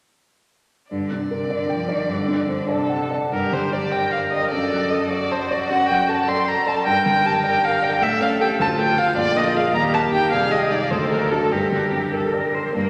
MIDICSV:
0, 0, Header, 1, 4, 480
1, 0, Start_track
1, 0, Key_signature, -2, "minor"
1, 0, Tempo, 399734
1, 1094, Time_signature, 6, 3, 24, 8
1, 6371, Tempo, 385604
1, 13091, Tempo, 408163
1, 15672, End_track
2, 0, Start_track
2, 0, Title_t, "Violin"
2, 0, Program_c, 0, 40
2, 1108, Note_on_c, 0, 74, 38
2, 3190, Note_off_c, 0, 74, 0
2, 3234, Note_on_c, 0, 69, 44
2, 3729, Note_off_c, 0, 69, 0
2, 3999, Note_on_c, 0, 70, 57
2, 4240, Note_on_c, 0, 72, 51
2, 4258, Note_off_c, 0, 70, 0
2, 4474, Note_on_c, 0, 74, 49
2, 4492, Note_off_c, 0, 72, 0
2, 4703, Note_on_c, 0, 79, 53
2, 4721, Note_off_c, 0, 74, 0
2, 4937, Note_off_c, 0, 79, 0
2, 4944, Note_on_c, 0, 77, 54
2, 5040, Note_off_c, 0, 77, 0
2, 5182, Note_on_c, 0, 75, 50
2, 5409, Note_off_c, 0, 75, 0
2, 5416, Note_on_c, 0, 74, 57
2, 5643, Note_off_c, 0, 74, 0
2, 5650, Note_on_c, 0, 74, 51
2, 5884, Note_on_c, 0, 75, 50
2, 5902, Note_off_c, 0, 74, 0
2, 6128, Note_off_c, 0, 75, 0
2, 6145, Note_on_c, 0, 74, 56
2, 6382, Note_on_c, 0, 72, 56
2, 6400, Note_off_c, 0, 74, 0
2, 6629, Note_on_c, 0, 74, 49
2, 6647, Note_off_c, 0, 72, 0
2, 6744, Note_off_c, 0, 74, 0
2, 6755, Note_on_c, 0, 74, 48
2, 6855, Note_off_c, 0, 74, 0
2, 6863, Note_on_c, 0, 78, 66
2, 7093, Note_off_c, 0, 78, 0
2, 7100, Note_on_c, 0, 79, 54
2, 7349, Note_on_c, 0, 81, 55
2, 7368, Note_off_c, 0, 79, 0
2, 7586, Note_on_c, 0, 84, 60
2, 7605, Note_off_c, 0, 81, 0
2, 7829, Note_on_c, 0, 82, 60
2, 7848, Note_off_c, 0, 84, 0
2, 8077, Note_on_c, 0, 81, 60
2, 8095, Note_off_c, 0, 82, 0
2, 8312, Note_off_c, 0, 81, 0
2, 8319, Note_on_c, 0, 79, 66
2, 8553, Note_off_c, 0, 79, 0
2, 8565, Note_on_c, 0, 79, 62
2, 8807, Note_on_c, 0, 81, 63
2, 8825, Note_off_c, 0, 79, 0
2, 9037, Note_off_c, 0, 81, 0
2, 9053, Note_on_c, 0, 79, 68
2, 9282, Note_on_c, 0, 77, 68
2, 9301, Note_off_c, 0, 79, 0
2, 9521, Note_on_c, 0, 79, 65
2, 9540, Note_off_c, 0, 77, 0
2, 9632, Note_off_c, 0, 79, 0
2, 9659, Note_on_c, 0, 79, 67
2, 9759, Note_on_c, 0, 76, 76
2, 9778, Note_off_c, 0, 79, 0
2, 9988, Note_off_c, 0, 76, 0
2, 9997, Note_on_c, 0, 77, 63
2, 10090, Note_off_c, 0, 77, 0
2, 10233, Note_on_c, 0, 79, 69
2, 10326, Note_off_c, 0, 79, 0
2, 10482, Note_on_c, 0, 81, 76
2, 10572, Note_off_c, 0, 81, 0
2, 10704, Note_on_c, 0, 79, 74
2, 10945, Note_on_c, 0, 77, 70
2, 10964, Note_off_c, 0, 79, 0
2, 11175, Note_off_c, 0, 77, 0
2, 11185, Note_on_c, 0, 74, 87
2, 11426, Note_on_c, 0, 75, 74
2, 11445, Note_off_c, 0, 74, 0
2, 11671, Note_on_c, 0, 77, 63
2, 11689, Note_off_c, 0, 75, 0
2, 11891, Note_off_c, 0, 77, 0
2, 11898, Note_on_c, 0, 82, 84
2, 11992, Note_off_c, 0, 82, 0
2, 12137, Note_on_c, 0, 81, 73
2, 12230, Note_off_c, 0, 81, 0
2, 12372, Note_on_c, 0, 79, 74
2, 12603, Note_off_c, 0, 79, 0
2, 12613, Note_on_c, 0, 77, 82
2, 12852, Note_on_c, 0, 75, 66
2, 12871, Note_off_c, 0, 77, 0
2, 13099, Note_on_c, 0, 74, 61
2, 13116, Note_off_c, 0, 75, 0
2, 13326, Note_on_c, 0, 72, 69
2, 13344, Note_off_c, 0, 74, 0
2, 13563, Note_off_c, 0, 72, 0
2, 13570, Note_on_c, 0, 70, 57
2, 13812, Note_on_c, 0, 69, 59
2, 13830, Note_off_c, 0, 70, 0
2, 14051, Note_on_c, 0, 67, 54
2, 14068, Note_off_c, 0, 69, 0
2, 14771, Note_off_c, 0, 67, 0
2, 15500, Note_on_c, 0, 70, 52
2, 15672, Note_off_c, 0, 70, 0
2, 15672, End_track
3, 0, Start_track
3, 0, Title_t, "Cello"
3, 0, Program_c, 1, 42
3, 1098, Note_on_c, 1, 50, 34
3, 1338, Note_on_c, 1, 48, 34
3, 1356, Note_off_c, 1, 50, 0
3, 1559, Note_off_c, 1, 48, 0
3, 1566, Note_on_c, 1, 48, 35
3, 1813, Note_on_c, 1, 50, 41
3, 1831, Note_off_c, 1, 48, 0
3, 2043, Note_on_c, 1, 53, 43
3, 2061, Note_off_c, 1, 50, 0
3, 2276, Note_on_c, 1, 51, 49
3, 2294, Note_off_c, 1, 53, 0
3, 2502, Note_off_c, 1, 51, 0
3, 2509, Note_on_c, 1, 50, 45
3, 3235, Note_on_c, 1, 48, 46
3, 3253, Note_off_c, 1, 50, 0
3, 3739, Note_off_c, 1, 48, 0
3, 3996, Note_on_c, 1, 67, 42
3, 4663, Note_off_c, 1, 67, 0
3, 4711, Note_on_c, 1, 70, 50
3, 5417, Note_on_c, 1, 69, 48
3, 5435, Note_off_c, 1, 70, 0
3, 6132, Note_on_c, 1, 66, 51
3, 6150, Note_off_c, 1, 69, 0
3, 7568, Note_off_c, 1, 66, 0
3, 7576, Note_on_c, 1, 69, 51
3, 8297, Note_on_c, 1, 70, 59
3, 8316, Note_off_c, 1, 69, 0
3, 9734, Note_off_c, 1, 70, 0
3, 9741, Note_on_c, 1, 69, 64
3, 10463, Note_on_c, 1, 65, 60
3, 10482, Note_off_c, 1, 69, 0
3, 11162, Note_off_c, 1, 65, 0
3, 11169, Note_on_c, 1, 65, 60
3, 11873, Note_off_c, 1, 65, 0
3, 11893, Note_on_c, 1, 67, 68
3, 12607, Note_on_c, 1, 68, 58
3, 12626, Note_off_c, 1, 67, 0
3, 13325, Note_on_c, 1, 69, 61
3, 13343, Note_off_c, 1, 68, 0
3, 14050, Note_on_c, 1, 70, 47
3, 14068, Note_off_c, 1, 69, 0
3, 14723, Note_off_c, 1, 70, 0
3, 14766, Note_on_c, 1, 69, 51
3, 15008, Note_on_c, 1, 70, 41
3, 15026, Note_off_c, 1, 69, 0
3, 15255, Note_on_c, 1, 72, 40
3, 15272, Note_off_c, 1, 70, 0
3, 15478, Note_off_c, 1, 72, 0
3, 15485, Note_on_c, 1, 58, 67
3, 15672, Note_off_c, 1, 58, 0
3, 15672, End_track
4, 0, Start_track
4, 0, Title_t, "Grand piano"
4, 0, Program_c, 2, 0
4, 1095, Note_on_c, 2, 43, 32
4, 1290, Control_c, 2, 64, 127
4, 1339, Note_on_c, 2, 62, 28
4, 1571, Note_on_c, 2, 70, 30
4, 1712, Note_off_c, 2, 62, 0
4, 1804, Note_on_c, 2, 74, 34
4, 1943, Note_off_c, 2, 70, 0
4, 2035, Note_on_c, 2, 79, 38
4, 2176, Note_off_c, 2, 74, 0
4, 2265, Note_on_c, 2, 74, 41
4, 2409, Note_off_c, 2, 79, 0
4, 2461, Note_off_c, 2, 43, 0
4, 2497, Note_on_c, 2, 43, 46
4, 2501, Note_off_c, 2, 74, 0
4, 2524, Control_c, 2, 64, 0
4, 2741, Note_on_c, 2, 62, 40
4, 2756, Control_c, 2, 64, 127
4, 2982, Note_on_c, 2, 72, 39
4, 3132, Note_off_c, 2, 62, 0
4, 3227, Note_on_c, 2, 74, 41
4, 3380, Note_off_c, 2, 72, 0
4, 3475, Note_on_c, 2, 78, 37
4, 3632, Note_off_c, 2, 74, 0
4, 3733, Note_on_c, 2, 74, 37
4, 3886, Note_off_c, 2, 78, 0
4, 3941, Note_off_c, 2, 43, 0
4, 3986, Note_off_c, 2, 74, 0
4, 3988, Note_on_c, 2, 43, 40
4, 4013, Control_c, 2, 64, 0
4, 4227, Control_c, 2, 64, 127
4, 4230, Note_on_c, 2, 50, 30
4, 4464, Note_on_c, 2, 67, 30
4, 4612, Note_off_c, 2, 50, 0
4, 4707, Note_on_c, 2, 74, 34
4, 4849, Note_off_c, 2, 67, 0
4, 4946, Note_on_c, 2, 79, 37
4, 5090, Note_off_c, 2, 74, 0
4, 5185, Note_on_c, 2, 74, 34
4, 5326, Note_off_c, 2, 79, 0
4, 5378, Note_off_c, 2, 43, 0
4, 5421, Note_off_c, 2, 74, 0
4, 5425, Note_on_c, 2, 42, 39
4, 5444, Control_c, 2, 64, 0
4, 5645, Control_c, 2, 64, 127
4, 5661, Note_on_c, 2, 54, 31
4, 5897, Note_on_c, 2, 69, 30
4, 6040, Note_off_c, 2, 54, 0
4, 6139, Note_on_c, 2, 74, 34
4, 6277, Note_off_c, 2, 69, 0
4, 6377, Note_on_c, 2, 81, 34
4, 6521, Note_off_c, 2, 74, 0
4, 6625, Note_on_c, 2, 74, 36
4, 6765, Note_off_c, 2, 81, 0
4, 6817, Note_off_c, 2, 42, 0
4, 6861, Note_on_c, 2, 42, 43
4, 6863, Note_off_c, 2, 74, 0
4, 6885, Control_c, 2, 64, 0
4, 7101, Control_c, 2, 64, 127
4, 7103, Note_on_c, 2, 54, 34
4, 7341, Note_on_c, 2, 69, 31
4, 7487, Note_off_c, 2, 54, 0
4, 7586, Note_on_c, 2, 74, 36
4, 7728, Note_off_c, 2, 69, 0
4, 7827, Note_on_c, 2, 81, 36
4, 7971, Note_off_c, 2, 74, 0
4, 8065, Note_on_c, 2, 74, 38
4, 8213, Note_off_c, 2, 81, 0
4, 8267, Note_off_c, 2, 42, 0
4, 8307, Note_on_c, 2, 43, 46
4, 8308, Note_off_c, 2, 74, 0
4, 8333, Control_c, 2, 64, 0
4, 8530, Control_c, 2, 64, 127
4, 8550, Note_on_c, 2, 50, 37
4, 8791, Note_on_c, 2, 67, 36
4, 8934, Note_off_c, 2, 50, 0
4, 9024, Note_on_c, 2, 74, 37
4, 9171, Note_off_c, 2, 67, 0
4, 9265, Note_on_c, 2, 79, 42
4, 9407, Note_off_c, 2, 74, 0
4, 9503, Note_on_c, 2, 74, 42
4, 9647, Note_off_c, 2, 79, 0
4, 9699, Note_off_c, 2, 43, 0
4, 9742, Note_off_c, 2, 74, 0
4, 9744, Note_on_c, 2, 45, 51
4, 9766, Control_c, 2, 64, 0
4, 9975, Control_c, 2, 64, 127
4, 9980, Note_on_c, 2, 61, 43
4, 10226, Note_on_c, 2, 67, 38
4, 10232, Note_on_c, 2, 69, 40
4, 10362, Note_off_c, 2, 61, 0
4, 10437, Note_off_c, 2, 45, 0
4, 10438, Note_off_c, 2, 67, 0
4, 10441, Note_off_c, 2, 69, 0
4, 10464, Note_on_c, 2, 38, 50
4, 10480, Control_c, 2, 64, 0
4, 10643, Control_c, 2, 64, 127
4, 10701, Note_on_c, 2, 57, 41
4, 10938, Note_on_c, 2, 65, 41
4, 10943, Note_on_c, 2, 69, 44
4, 11076, Note_off_c, 2, 57, 0
4, 11148, Note_off_c, 2, 65, 0
4, 11150, Note_off_c, 2, 38, 0
4, 11151, Note_off_c, 2, 69, 0
4, 11172, Note_on_c, 2, 34, 55
4, 11194, Control_c, 2, 64, 0
4, 11388, Control_c, 2, 64, 127
4, 11405, Note_on_c, 2, 58, 41
4, 11649, Note_on_c, 2, 65, 40
4, 11657, Note_on_c, 2, 68, 45
4, 11790, Note_off_c, 2, 58, 0
4, 11864, Note_off_c, 2, 65, 0
4, 11867, Note_off_c, 2, 34, 0
4, 11868, Note_off_c, 2, 68, 0
4, 11887, Note_on_c, 2, 39, 53
4, 11911, Control_c, 2, 64, 0
4, 12098, Control_c, 2, 64, 127
4, 12129, Note_on_c, 2, 58, 45
4, 12371, Note_on_c, 2, 63, 37
4, 12372, Note_on_c, 2, 67, 46
4, 12510, Note_off_c, 2, 58, 0
4, 12583, Note_off_c, 2, 39, 0
4, 12584, Note_off_c, 2, 63, 0
4, 12585, Note_off_c, 2, 67, 0
4, 12609, Note_on_c, 2, 36, 50
4, 12630, Control_c, 2, 64, 0
4, 12824, Control_c, 2, 64, 127
4, 12848, Note_on_c, 2, 56, 42
4, 13099, Note_on_c, 2, 63, 38
4, 13105, Note_on_c, 2, 68, 42
4, 13234, Note_off_c, 2, 56, 0
4, 13309, Note_off_c, 2, 36, 0
4, 13309, Note_off_c, 2, 63, 0
4, 13312, Note_off_c, 2, 68, 0
4, 13331, Note_on_c, 2, 38, 47
4, 13353, Control_c, 2, 64, 0
4, 13561, Control_c, 2, 64, 127
4, 13566, Note_on_c, 2, 57, 36
4, 13808, Note_on_c, 2, 62, 33
4, 13811, Note_on_c, 2, 66, 37
4, 13951, Note_off_c, 2, 57, 0
4, 14025, Note_off_c, 2, 62, 0
4, 14027, Note_off_c, 2, 66, 0
4, 14028, Note_off_c, 2, 38, 0
4, 14044, Note_on_c, 2, 43, 44
4, 14071, Control_c, 2, 64, 0
4, 14281, Control_c, 2, 64, 127
4, 14285, Note_on_c, 2, 50, 30
4, 14526, Note_on_c, 2, 62, 33
4, 14672, Note_off_c, 2, 50, 0
4, 14764, Note_on_c, 2, 70, 35
4, 14912, Note_off_c, 2, 62, 0
4, 15011, Note_on_c, 2, 74, 34
4, 15156, Note_off_c, 2, 70, 0
4, 15254, Note_on_c, 2, 70, 35
4, 15402, Note_off_c, 2, 74, 0
4, 15451, Note_off_c, 2, 43, 0
4, 15495, Note_off_c, 2, 70, 0
4, 15496, Note_on_c, 2, 43, 48
4, 15520, Control_c, 2, 64, 0
4, 15672, Note_off_c, 2, 43, 0
4, 15672, End_track
0, 0, End_of_file